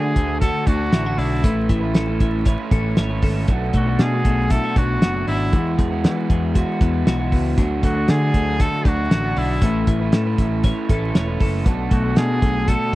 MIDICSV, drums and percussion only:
0, 0, Header, 1, 2, 480
1, 0, Start_track
1, 0, Tempo, 511073
1, 1353, Time_signature, 4, 2, 24, 8
1, 12163, End_track
2, 0, Start_track
2, 0, Title_t, "Drums"
2, 149, Note_on_c, 9, 36, 79
2, 150, Note_on_c, 9, 42, 63
2, 243, Note_off_c, 9, 36, 0
2, 244, Note_off_c, 9, 42, 0
2, 388, Note_on_c, 9, 42, 96
2, 390, Note_on_c, 9, 36, 96
2, 391, Note_on_c, 9, 38, 39
2, 482, Note_off_c, 9, 42, 0
2, 484, Note_off_c, 9, 36, 0
2, 485, Note_off_c, 9, 38, 0
2, 628, Note_on_c, 9, 36, 102
2, 629, Note_on_c, 9, 42, 67
2, 722, Note_off_c, 9, 36, 0
2, 723, Note_off_c, 9, 42, 0
2, 869, Note_on_c, 9, 42, 82
2, 870, Note_on_c, 9, 38, 117
2, 963, Note_off_c, 9, 42, 0
2, 964, Note_off_c, 9, 38, 0
2, 1114, Note_on_c, 9, 46, 80
2, 1207, Note_off_c, 9, 46, 0
2, 1350, Note_on_c, 9, 42, 98
2, 1351, Note_on_c, 9, 36, 102
2, 1444, Note_off_c, 9, 42, 0
2, 1445, Note_off_c, 9, 36, 0
2, 1589, Note_on_c, 9, 42, 75
2, 1590, Note_on_c, 9, 36, 86
2, 1683, Note_off_c, 9, 42, 0
2, 1684, Note_off_c, 9, 36, 0
2, 1826, Note_on_c, 9, 42, 82
2, 1830, Note_on_c, 9, 38, 106
2, 1920, Note_off_c, 9, 42, 0
2, 1924, Note_off_c, 9, 38, 0
2, 2067, Note_on_c, 9, 42, 64
2, 2069, Note_on_c, 9, 36, 88
2, 2161, Note_off_c, 9, 42, 0
2, 2163, Note_off_c, 9, 36, 0
2, 2305, Note_on_c, 9, 42, 97
2, 2309, Note_on_c, 9, 38, 34
2, 2311, Note_on_c, 9, 36, 96
2, 2399, Note_off_c, 9, 42, 0
2, 2402, Note_off_c, 9, 38, 0
2, 2404, Note_off_c, 9, 36, 0
2, 2549, Note_on_c, 9, 36, 107
2, 2552, Note_on_c, 9, 42, 66
2, 2643, Note_off_c, 9, 36, 0
2, 2646, Note_off_c, 9, 42, 0
2, 2788, Note_on_c, 9, 38, 124
2, 2788, Note_on_c, 9, 42, 70
2, 2882, Note_off_c, 9, 38, 0
2, 2882, Note_off_c, 9, 42, 0
2, 3026, Note_on_c, 9, 46, 79
2, 3030, Note_on_c, 9, 36, 95
2, 3119, Note_off_c, 9, 46, 0
2, 3124, Note_off_c, 9, 36, 0
2, 3265, Note_on_c, 9, 42, 98
2, 3270, Note_on_c, 9, 36, 95
2, 3359, Note_off_c, 9, 42, 0
2, 3364, Note_off_c, 9, 36, 0
2, 3505, Note_on_c, 9, 42, 89
2, 3510, Note_on_c, 9, 36, 85
2, 3599, Note_off_c, 9, 42, 0
2, 3604, Note_off_c, 9, 36, 0
2, 3745, Note_on_c, 9, 42, 84
2, 3750, Note_on_c, 9, 38, 106
2, 3839, Note_off_c, 9, 42, 0
2, 3844, Note_off_c, 9, 38, 0
2, 3990, Note_on_c, 9, 42, 67
2, 3991, Note_on_c, 9, 36, 84
2, 4084, Note_off_c, 9, 42, 0
2, 4085, Note_off_c, 9, 36, 0
2, 4229, Note_on_c, 9, 42, 97
2, 4232, Note_on_c, 9, 38, 38
2, 4233, Note_on_c, 9, 36, 104
2, 4322, Note_off_c, 9, 42, 0
2, 4326, Note_off_c, 9, 38, 0
2, 4327, Note_off_c, 9, 36, 0
2, 4473, Note_on_c, 9, 36, 103
2, 4474, Note_on_c, 9, 42, 71
2, 4566, Note_off_c, 9, 36, 0
2, 4568, Note_off_c, 9, 42, 0
2, 4715, Note_on_c, 9, 38, 117
2, 4715, Note_on_c, 9, 42, 80
2, 4809, Note_off_c, 9, 38, 0
2, 4809, Note_off_c, 9, 42, 0
2, 4954, Note_on_c, 9, 46, 82
2, 5048, Note_off_c, 9, 46, 0
2, 5191, Note_on_c, 9, 42, 93
2, 5194, Note_on_c, 9, 36, 96
2, 5285, Note_off_c, 9, 42, 0
2, 5288, Note_off_c, 9, 36, 0
2, 5435, Note_on_c, 9, 36, 88
2, 5436, Note_on_c, 9, 42, 74
2, 5529, Note_off_c, 9, 36, 0
2, 5530, Note_off_c, 9, 42, 0
2, 5675, Note_on_c, 9, 42, 82
2, 5680, Note_on_c, 9, 38, 112
2, 5769, Note_off_c, 9, 42, 0
2, 5774, Note_off_c, 9, 38, 0
2, 5916, Note_on_c, 9, 36, 94
2, 5919, Note_on_c, 9, 42, 62
2, 6010, Note_off_c, 9, 36, 0
2, 6013, Note_off_c, 9, 42, 0
2, 6155, Note_on_c, 9, 42, 96
2, 6156, Note_on_c, 9, 36, 88
2, 6249, Note_off_c, 9, 42, 0
2, 6250, Note_off_c, 9, 36, 0
2, 6395, Note_on_c, 9, 36, 98
2, 6398, Note_on_c, 9, 42, 73
2, 6489, Note_off_c, 9, 36, 0
2, 6492, Note_off_c, 9, 42, 0
2, 6638, Note_on_c, 9, 42, 75
2, 6639, Note_on_c, 9, 38, 122
2, 6732, Note_off_c, 9, 38, 0
2, 6732, Note_off_c, 9, 42, 0
2, 6876, Note_on_c, 9, 36, 83
2, 6876, Note_on_c, 9, 46, 83
2, 6970, Note_off_c, 9, 36, 0
2, 6970, Note_off_c, 9, 46, 0
2, 7116, Note_on_c, 9, 36, 101
2, 7116, Note_on_c, 9, 42, 99
2, 7210, Note_off_c, 9, 36, 0
2, 7210, Note_off_c, 9, 42, 0
2, 7355, Note_on_c, 9, 36, 84
2, 7355, Note_on_c, 9, 42, 81
2, 7448, Note_off_c, 9, 42, 0
2, 7449, Note_off_c, 9, 36, 0
2, 7589, Note_on_c, 9, 42, 81
2, 7594, Note_on_c, 9, 38, 108
2, 7683, Note_off_c, 9, 42, 0
2, 7688, Note_off_c, 9, 38, 0
2, 7833, Note_on_c, 9, 42, 61
2, 7834, Note_on_c, 9, 36, 81
2, 7927, Note_off_c, 9, 42, 0
2, 7928, Note_off_c, 9, 36, 0
2, 8074, Note_on_c, 9, 42, 96
2, 8075, Note_on_c, 9, 36, 98
2, 8077, Note_on_c, 9, 38, 40
2, 8168, Note_off_c, 9, 42, 0
2, 8169, Note_off_c, 9, 36, 0
2, 8171, Note_off_c, 9, 38, 0
2, 8313, Note_on_c, 9, 36, 109
2, 8318, Note_on_c, 9, 42, 72
2, 8407, Note_off_c, 9, 36, 0
2, 8412, Note_off_c, 9, 42, 0
2, 8556, Note_on_c, 9, 38, 125
2, 8556, Note_on_c, 9, 42, 73
2, 8650, Note_off_c, 9, 38, 0
2, 8650, Note_off_c, 9, 42, 0
2, 8794, Note_on_c, 9, 46, 78
2, 8888, Note_off_c, 9, 46, 0
2, 9032, Note_on_c, 9, 42, 107
2, 9033, Note_on_c, 9, 36, 99
2, 9125, Note_off_c, 9, 42, 0
2, 9127, Note_off_c, 9, 36, 0
2, 9271, Note_on_c, 9, 42, 89
2, 9272, Note_on_c, 9, 36, 84
2, 9365, Note_off_c, 9, 42, 0
2, 9366, Note_off_c, 9, 36, 0
2, 9508, Note_on_c, 9, 42, 92
2, 9513, Note_on_c, 9, 38, 109
2, 9602, Note_off_c, 9, 42, 0
2, 9607, Note_off_c, 9, 38, 0
2, 9751, Note_on_c, 9, 42, 68
2, 9752, Note_on_c, 9, 36, 83
2, 9845, Note_off_c, 9, 42, 0
2, 9846, Note_off_c, 9, 36, 0
2, 9989, Note_on_c, 9, 42, 96
2, 9993, Note_on_c, 9, 36, 97
2, 10083, Note_off_c, 9, 42, 0
2, 10087, Note_off_c, 9, 36, 0
2, 10231, Note_on_c, 9, 36, 102
2, 10232, Note_on_c, 9, 42, 69
2, 10325, Note_off_c, 9, 36, 0
2, 10326, Note_off_c, 9, 42, 0
2, 10472, Note_on_c, 9, 42, 81
2, 10473, Note_on_c, 9, 38, 118
2, 10566, Note_off_c, 9, 38, 0
2, 10566, Note_off_c, 9, 42, 0
2, 10710, Note_on_c, 9, 46, 79
2, 10711, Note_on_c, 9, 36, 92
2, 10804, Note_off_c, 9, 46, 0
2, 10805, Note_off_c, 9, 36, 0
2, 10950, Note_on_c, 9, 42, 97
2, 10951, Note_on_c, 9, 36, 98
2, 11044, Note_off_c, 9, 42, 0
2, 11045, Note_off_c, 9, 36, 0
2, 11186, Note_on_c, 9, 42, 81
2, 11189, Note_on_c, 9, 36, 92
2, 11280, Note_off_c, 9, 42, 0
2, 11283, Note_off_c, 9, 36, 0
2, 11423, Note_on_c, 9, 42, 80
2, 11428, Note_on_c, 9, 38, 110
2, 11517, Note_off_c, 9, 42, 0
2, 11522, Note_off_c, 9, 38, 0
2, 11667, Note_on_c, 9, 36, 92
2, 11667, Note_on_c, 9, 42, 70
2, 11760, Note_off_c, 9, 42, 0
2, 11761, Note_off_c, 9, 36, 0
2, 11906, Note_on_c, 9, 42, 98
2, 11908, Note_on_c, 9, 36, 95
2, 11909, Note_on_c, 9, 38, 40
2, 12000, Note_off_c, 9, 42, 0
2, 12002, Note_off_c, 9, 36, 0
2, 12003, Note_off_c, 9, 38, 0
2, 12163, End_track
0, 0, End_of_file